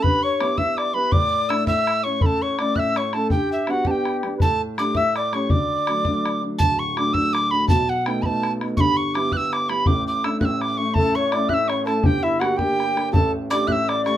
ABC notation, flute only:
X:1
M:6/8
L:1/16
Q:3/8=110
K:Amix
V:1 name="Flute"
B2 c4 e2 d2 B2 | d6 e4 c2 | A2 c2 d2 e2 c2 A2 | G4 F2 G4- G3/2 B/2 |
A2 z4 e2 d2 c2 | d8- d2 z2 | z12 | z12 |
z12 | z12 | A2 c2 d2 e2 c2 A2 | G2 E2 F2 G6 |
A2 z2 d2 e2 d4 |]